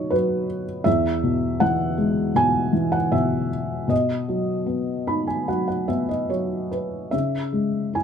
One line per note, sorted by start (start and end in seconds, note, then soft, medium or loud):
0.00 0.82 B2 medium
0.00 0.12 F#3 soft
0.00 0.88 D#4 soft
0.00 0.45 F#4 soft
0.00 0.14 C#5 medium
0.00 0.88 D#5 medium
0.10 0.84 F#3 soft
0.10 0.63 B4 medium
0.84 3.86 E2 medium
0.84 1.63 E5 medium
1.23 2.33 B2 soft
1.60 2.71 E3 soft
1.60 2.32 F#5 medium
1.98 3.47 G#3 medium
2.35 3.10 B2 soft
2.35 2.96 G#5 medium
2.73 3.86 E3 soft
2.92 3.13 F#5 medium
3.12 3.86 B2 soft
3.12 3.92 E5 medium
3.88 7.08 B2 medium
3.88 6.07 D#5 medium
4.28 5.46 F#3 soft
4.66 5.87 B3 soft
5.07 6.68 D#4 soft
5.07 5.27 B5 medium
5.27 5.47 G#5 soft
5.48 6.28 F#3 soft
5.48 5.66 F#5 medium
5.68 5.88 F#5 soft
5.88 7.09 B3 soft
5.88 6.08 E5 medium
6.09 6.29 D#5 soft
6.30 7.10 F#3 soft
6.30 6.69 C#5 medium
6.71 7.10 B4 soft
7.11 8.04 C#3 soft
7.11 7.96 E5 medium
7.53 8.04 G#3 soft
7.93 8.04 E4 soft
7.93 8.04 G#5 medium